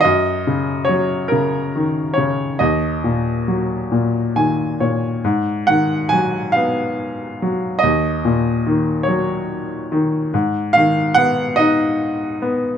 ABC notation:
X:1
M:6/8
L:1/8
Q:3/8=47
K:Ebm
V:1 name="Upright piano"
e2 d B2 d | e4- e z | z g a f3 | e3 d2 z |
z f g e3 |]
V:2 name="Upright piano" clef=bass
G,, D, G, D, E, D, | E,, B,, G, B,, [E,a] [B,,d] | A,, E, G, C2 G, | E,, B,, E, G,2 E, |
A,, E, C E2 C |]